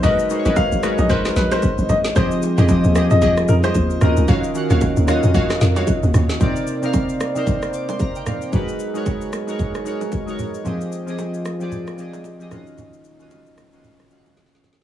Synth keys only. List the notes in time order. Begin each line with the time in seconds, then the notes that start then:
0.02 G#3 D#4 F#4 A#4 B4
0.29 G#3 D#4 F#4 A#4 C5
0.39 C#5
0.82 G#3 D#4 F#4 A#4 C#5
2.15 F3 C4 G4 G#4 D5
2.25 D#5
2.68 F3 C4 G4 G#4 D#5
2.95 F3 C4 G4 G#4 D#5
4.01 D#3 C#4 F4 F#4 D#5
4.54 D#3 C#4 F#4 F5 F#5
5.07 D#3 C#4 F4 F#4 D#5
6.40 C3 C4 D#4 A#4 D5
6.82 C3 C4 D#4 A#4 F5
7.35 C3 C4 D#4 A#4 C5
7.74 D6
7.90 C6
8.01 A#5
8.16 G5
8.27 F5
8.43 G5
8.52 G#3 D#4 F#4 A#4 B4
8.94 G#3 D#4 F#4 A#4 C#5
9.47 G#3 D#4 F#4 A#4 C#5
9.85 G#3 D#4 F#4 A#4 C#5
10.27 G#3 D#4 F#4 A#4 C#5
10.64 F3 C4 G4 G#4 D#5
11.06 F3 C4 G4 G#4 D#5
11.59 F3 C4 G4 G#4 D5
11.97 F3 C4 G4 G#4 D#5
12.39 F3 C4 G4 G#4 D#5
12.50 D#3 C#4 F4 F#4 D#5
13.19 D#3 C#4 F4 F#4 D#5
13.72 D#3 C#4 F4 F#4 D#5
14.10 D#3 C#4 F#4 F5 F#5
14.51 D#3 C#4 F4 F#4 F5